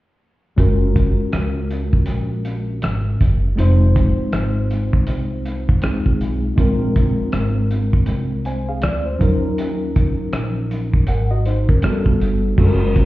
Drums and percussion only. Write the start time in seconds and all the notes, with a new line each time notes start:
0.58 kick, closed hi-hat
0.96 kick, closed hi-hat
1.33 cross-stick, closed hi-hat
1.71 closed hi-hat
1.93 kick
2.06 closed hi-hat
2.45 closed hi-hat
2.82 cross-stick, closed hi-hat
3.21 kick, closed hi-hat
3.58 closed hi-hat
3.96 kick, closed hi-hat
4.33 cross-stick, closed hi-hat
4.71 closed hi-hat
4.93 kick
5.07 closed hi-hat
5.45 closed hi-hat
5.69 kick
5.82 cross-stick, closed hi-hat
6.06 kick
6.21 closed hi-hat
6.58 kick, closed hi-hat
6.96 kick, closed hi-hat
7.32 cross-stick, closed hi-hat
7.71 closed hi-hat
7.93 kick
8.06 closed hi-hat
8.45 closed hi-hat
8.82 cross-stick, closed hi-hat
9.21 kick, closed hi-hat
9.58 closed hi-hat
9.96 kick, closed hi-hat
10.33 cross-stick, closed hi-hat
10.71 closed hi-hat
10.93 kick
11.07 closed hi-hat
11.46 closed hi-hat
11.69 kick
11.82 cross-stick, closed hi-hat
12.06 kick
12.21 closed hi-hat
12.58 kick, crash
12.96 kick, closed hi-hat